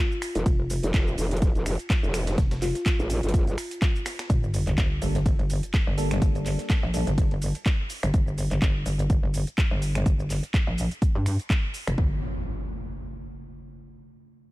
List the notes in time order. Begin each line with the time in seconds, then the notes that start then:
Already playing: F4
0.12 shaker
0.22 finger snap, open hi-hat, ride, shaker
0.35 F1, closed hi-hat, shaker
0.46 F1, kick, closed hi-hat, ride, shaker
0.70 open hi-hat, ride, shaker
0.83 F1, closed hi-hat, shaker
0.94 F1, kick, snare, clap, closed hi-hat, ride, shaker
1.08 shaker
1.18 F1, open hi-hat, ride, shaker
1.31 snare, closed hi-hat, shaker
1.37 closed hi-hat
1.42 kick, closed hi-hat, ride, shaker
1.55 F1, ride, shaker
1.66 finger snap, open hi-hat, ride, shaker
1.79 closed hi-hat, shaker
1.90 kick, snare, clap, closed hi-hat, ride, shaker
2.03 F1, shaker
2.14 finger snap, snare, open hi-hat, ride, shaker
2.27 snare, closed hi-hat, ride, shaker
2.38 F1, kick, snare, closed hi-hat, ride, shaker
2.51 snare, ride, shaker
2.62 F4, clap, open hi-hat, ride, shaker
2.75 snare, closed hi-hat, shaker
2.86 kick, snare, clap, closed hi-hat, ride, shaker
2.99 A1, shaker
3.10 open hi-hat, ride, shaker
3.23 G1, snare, closed hi-hat, shaker
3.29 closed hi-hat
3.34 kick, closed hi-hat, ride, shaker
3.47 ride, shaker
3.58 finger snap, open hi-hat, ride, shaker
3.71 closed hi-hat, ride, shaker
3.82 kick, snare, clap, closed hi-hat, ride, shaker
3.96 shaker
4.06 finger snap, snare, open hi-hat, ride, shaker
4.19 finger snap, snare, closed hi-hat, ride, shaker
4.30 G1, kick, closed hi-hat, ride, sub drop, shaker
4.43 shaker
4.54 open hi-hat, ride, shaker
4.67 G1, clap, closed hi-hat, shaker
4.78 G1, kick, snare, clap, closed hi-hat, ride, shaker
5.02 G1 G3 A#3 D4 A4, open hi-hat, ride, shaker
5.15 snare, closed hi-hat, shaker
5.26 kick, closed hi-hat, ride, shaker
5.39 G1, ride
5.50 open hi-hat, ride, shaker
5.63 closed hi-hat, shaker
5.74 kick, snare, clap, closed hi-hat, ride, shaker
5.87 G1
5.98 G3 A#3 D4 A4, open hi-hat, ride, shaker
6.11 finger snap, snare, closed hi-hat, shaker
6.22 G1, kick, closed hi-hat, ride, shaker
6.35 ride, shaker
6.46 clap, open hi-hat, ride, shaker
6.59 snare, closed hi-hat, shaker
6.70 kick, snare, clap, closed hi-hat, ride, shaker
6.83 A#1
6.94 G3 A#3 D4 A4, open hi-hat, ride, shaker
7.07 G1, snare, closed hi-hat, shaker
7.18 kick, closed hi-hat, ride, shaker
7.31 ride
7.42 open hi-hat, ride, shaker
7.55 closed hi-hat, ride, shaker
7.66 kick, snare, clap, closed hi-hat, ride, shaker
7.90 open hi-hat, ride, shaker
8.03 G1, finger snap, closed hi-hat, shaker
8.14 kick, closed hi-hat, shaker
8.27 shaker
8.38 open hi-hat, shaker
8.51 G1, clap, closed hi-hat, shaker
8.62 G1, kick, clap, closed hi-hat, shaker
8.86 G1, open hi-hat, shaker
8.99 closed hi-hat, shaker
9.10 kick, closed hi-hat, shaker
9.23 G1
9.34 open hi-hat, shaker
9.47 closed hi-hat, shaker
9.58 kick, clap, closed hi-hat, shaker
9.71 G1
9.82 open hi-hat, shaker
9.95 finger snap, closed hi-hat, shaker
10.06 kick, closed hi-hat, shaker
10.20 shaker
10.30 clap, open hi-hat, shaker
10.43 closed hi-hat, shaker
10.54 kick, clap, closed hi-hat, shaker
10.67 A#1
10.78 open hi-hat, shaker
10.91 closed hi-hat, shaker
11.02 kick, closed hi-hat, shaker
11.15 G2
11.26 finger snap, open hi-hat, shaker
11.40 closed hi-hat, shaker
11.50 kick, clap, closed hi-hat, shaker
11.74 open hi-hat, shaker
11.87 F1, finger snap, closed hi-hat, shaker
11.98 G1, kick, impact